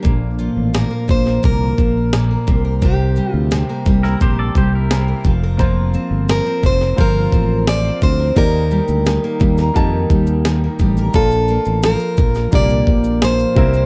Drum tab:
SH |x-x-x-x-x-x-x-x-|x-x-x-x-x-x-x-x-|x-x-x-x-x-x-x-x-|x-xxx-xxx-xxx-xx|
SD |----o--o----o---|----o--o----o---|----o--o----o---|----o--o----o---|
BD |o-----o-o-o---o-|o-----o-o-o---o-|o-----o-o-o---o-|o-----o-o-o---o-|

SH |xxxxxxxxxx-xxx-x|
SD |----o--o----o---|
BD |o-----o-o-o---o-|